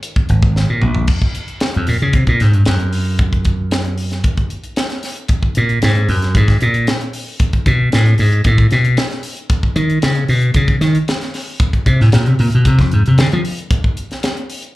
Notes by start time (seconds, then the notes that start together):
0.03 closed hi-hat
0.16 kick
0.29 G#1, closed hi-hat
0.42 kick
0.56 snare
0.69 A#2
0.82 A#1, mid tom
0.95 floor tom
1.07 kick, crash
1.22 kick
1.35 closed hi-hat
1.48 closed hi-hat
1.60 snare, closed hi-hat
1.74 F2, closed hi-hat
1.87 A#2, open hi-hat
2.01 C#3, closed hi-hat
2.13 C3, kick, closed hi-hat
2.27 A#2, kick, closed hi-hat
2.40 G#2, snare, closed hi-hat
2.54 G2, closed hi-hat
2.66 F#2, snare, closed hi-hat
2.80 closed hi-hat
2.93 open hi-hat
3.19 kick, closed hi-hat
3.33 kick, closed hi-hat
3.45 kick, closed hi-hat
3.71 snare, closed hi-hat
3.85 closed hi-hat
3.98 open hi-hat
4.11 snare, closed hi-hat
4.24 kick, closed hi-hat
4.37 kick, closed hi-hat
4.50 closed hi-hat
4.64 closed hi-hat
4.76 snare, closed hi-hat
4.90 snare, closed hi-hat
5.03 snare, open hi-hat
5.16 closed hi-hat
5.29 kick, closed hi-hat
5.43 kick
5.55 A#2, closed hi-hat
5.69 closed hi-hat
5.82 G#2, snare, closed hi-hat
5.95 closed hi-hat
6.09 F#2, open hi-hat
6.22 snare, closed hi-hat
6.35 G#2, kick, closed hi-hat
6.48 kick, snare, closed hi-hat
6.60 A#2, closed hi-hat
6.74 closed hi-hat
6.87 snare, closed hi-hat
7.01 closed hi-hat
7.13 open hi-hat
7.40 kick, closed hi-hat
7.53 kick, closed hi-hat
7.66 B2, kick, closed hi-hat
7.92 A2, snare, closed hi-hat
8.06 closed hi-hat
8.18 G#2, open hi-hat
8.32 closed hi-hat
8.44 A2, kick, closed hi-hat
8.58 kick, closed hi-hat
8.71 B2, snare, closed hi-hat
8.85 closed hi-hat
8.97 snare, closed hi-hat
9.10 snare, closed hi-hat
9.23 open hi-hat
9.37 closed hi-hat
9.50 kick, closed hi-hat
9.63 kick
9.76 D#3, closed hi-hat
9.90 closed hi-hat
10.02 C#3, snare, closed hi-hat
10.15 closed hi-hat
10.28 B2, open hi-hat
10.42 closed hi-hat
10.54 C#3, kick, closed hi-hat
10.68 kick, closed hi-hat
10.81 D#3, snare, closed hi-hat
10.95 closed hi-hat
11.08 snare, closed hi-hat
11.21 snare, closed hi-hat
11.34 snare, open hi-hat
11.60 kick, closed hi-hat
11.73 kick, closed hi-hat
11.86 C3, kick, closed hi-hat
12.01 A2, snare
12.12 A#2, snare, closed hi-hat
12.26 C3, closed hi-hat
12.39 A#2, open hi-hat
12.52 B2, closed hi-hat
12.65 C3, kick, closed hi-hat
12.79 F2, kick, snare, closed hi-hat
12.91 G#2, closed hi-hat
13.06 C3, closed hi-hat
13.18 D3, snare, closed hi-hat
13.32 F3, closed hi-hat
13.45 open hi-hat
13.59 closed hi-hat
13.71 kick, closed hi-hat
13.84 kick
13.97 closed hi-hat
14.11 snare, closed hi-hat
14.23 snare, closed hi-hat
14.37 closed hi-hat
14.50 open hi-hat
14.62 closed hi-hat